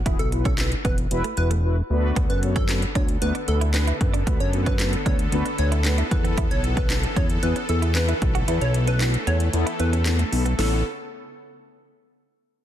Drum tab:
HH |xxxxxxxxxxxx----|xxxxxxxxxxxxxxxx|xxxxxxxxxxxxxxxx|xxxxxxxxxxxxxxxx|
CP |----x-----------|----x-------x---|----x-------x---|----x-------x---|
SD |----o-----------|----o-------o---|----o-------o---|----o-------o---|
BD |o--o--o---------|o--o--o-------o-|o--o--o-------o-|o--o--o-------o-|

HH |xxxxxxxxxxxxxxox|o---------------|
CP |----x-------x---|----------------|
SD |----o-------o---|o---------------|
BD |----------------|----------------|